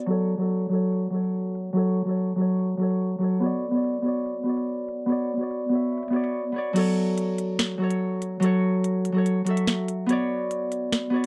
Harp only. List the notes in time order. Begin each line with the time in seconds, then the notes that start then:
0.06 F#3 F#4 A4
0.12 C#5
0.37 F#3 F#4 A4
0.43 C#5
0.69 F#3 F#4 A4
0.75 C#5
1.10 F#3 F#4 A4
1.16 C#5
1.73 F#3 F#4 A4
1.79 C#5
2.05 F#3 F#4 A4
2.10 C#5
2.36 F#3 F#4 A4
2.41 C#5
2.77 F#3 F#4 A4
2.83 C#5
3.18 F#3 F#4 A4
3.24 C#5
3.40 B3 F#4 C#5
3.46 D5
3.71 B3 F#4 C#5
3.77 D5
4.02 B3 F#4 C#5
4.08 D5
4.43 B3 F#4 C#5
4.49 D5
5.06 B3 F#4 C#5
5.12 D5
5.37 B3 F#4 C#5
5.43 D5
5.69 B3 F#4 C#5
5.75 E5
6.10 B3 F#4 C#5
6.16 D5
6.52 B3 F#4 C#5
6.58 D5
6.73 F#3 F#4 A4
6.79 C#5
7.78 F#3 F#4 A4
7.84 C#5
8.40 F#3 F#4 A4
8.46 C#5
9.12 F#3 F#4 A4
9.18 C#5
9.45 F#3 F#4 A4
9.50 E5
10.06 B3 F#4 C#5
10.12 D5
11.10 B3 F#4 C#5
11.16 D5